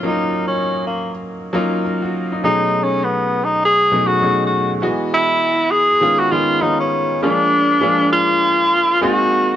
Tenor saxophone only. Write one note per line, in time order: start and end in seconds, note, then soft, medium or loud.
0.07 0.43 D#4 medium
0.48 0.83 C#4 medium
0.87 1.14 A#3 medium
2.45 2.85 D#4 medium
2.84 3.06 C#4 medium
3.04 3.46 B3 medium
3.45 3.64 D#4 medium
3.65 4.08 G#4 loud
4.07 4.45 F#4 loud
4.47 4.73 F#4 medium
5.14 5.73 E4 loud
5.71 6.21 G#4 loud
6.19 6.33 F#4 medium
6.32 6.63 F4 medium
6.62 6.79 D#4 medium
6.80 7.20 C#4 medium
7.24 8.08 D4 loud
8.13 8.98 F4 loud
9.03 9.56 F#4 medium